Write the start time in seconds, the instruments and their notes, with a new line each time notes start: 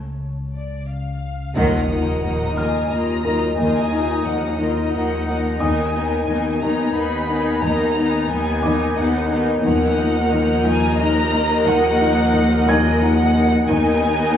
Already playing: synth drone C#2
0.54 violin section D5
0.88 violin section F5
1.55 double bass section D#2, synth drone D#2, cello section D#2 D#3, viola section F3 A#3, synth texture D#4 D#5 A#5, violin section A#4 D#5 F#5 A#5 D#6, sub drop
1.89 viola section F3 A#3, cello section D#4, violin section A#4 D#5
2.23 cello section D#2 D#3, viola section F3 A#3, violin section A#4 D#5
2.56 cello section D#3, viola section A#3 F4, violin section A#4 D#5 G#5, felt piano F6
2.91 cello section D#2 D#4, viola section A#3 F4, violin section A#4 D#5 A#5
3.24 viola section F#3 F4, cello section D#4, violin section A#4 D#5, felt piano A#4 A#5
3.58 double bass section D#2, cello section D#2 D#3, viola section A#3 F4, violin section A#4 D#5 G#5
3.91 viola section A#3 F4, cello section D#4, violin section A#4 D#5
4.25 cello section D#2 D#3, viola section F3 A#3, violin section A#4 D#5 F#5
4.59 cello section D#3, viola section A#3 F4, violin section A#4 D#5
4.92 cello section D#2 D#4, viola section F3 A#3, violin section A#4 D#5 F#5
5.25 viola section F3 A#3, cello section D#4, violin section A#4 D#5
5.59 synth drone D#2, double bass section D#2, cello section D#2 D#3, viola section B3 D#4, synth texture B3 D#4 G#5, violin section A#4 D#5 G#5, felt piano D#5 D#6
5.93 viola section B3 D#4, cello section D#4, violin section A#4 D#5
6.27 cello section D#2 D#3, viola section B3 D#4, violin section A#4 D#5
6.61 cello section D#3, viola section B3 D#4, violin section A#4 D#5 A#5
6.95 cello section D#2 D#4, viola section B3 D#4, violin section A#4 D#5 B5
7.29 viola section B3 D#4, cello section D#4, violin section A#4 D#5
7.62 double bass section D#2, cello section D#2 D#3, viola section B3 D#4, violin section A#4 D#5 A#5
7.96 viola section B3 D#4, cello section D#4, violin section A#4 D#5
8.29 cello section D#2 D#3, viola section B3 D#4, violin section A#4 D#5 G#5
8.63 cello section D#3, viola section B3 D#4, violin section A#4 D#5, felt piano D6
8.97 cello section D#2 D#4, viola section B3 D#4, violin section A#4 D#5 F#5
9.31 viola section B3 D#4, cello section D#4, violin section A#4 D#5
9.64 synth drone D#2, cello section D#2 D#3, double bass section D#2, viola section F3 A#3, synth texture D#4 A#4 A#5, violin section A#4 D#5 F#5 D#6 F6
9.98 cello section D#4
10.32 cello section D#3
10.65 cello section D#3, violin section G#5
11.00 cello section D#4, violin section A#5 F#6
11.34 cello section D#4
11.67 cello section D#3, violin section F#5
11.90 violin section F#6
12.01 cello section D#4
12.34 cello section D#3
12.68 cello section D#3, violin section D#5, felt piano G#5 G#6
13.01 cello section D#4, violin section F#5
13.35 cello section D#4
13.68 cello section D#2 D#3, double bass section D#2, synth texture B3 G#4, viola section B3 D#4, violin section A#4 D#5 G#5
14.03 cello section D#4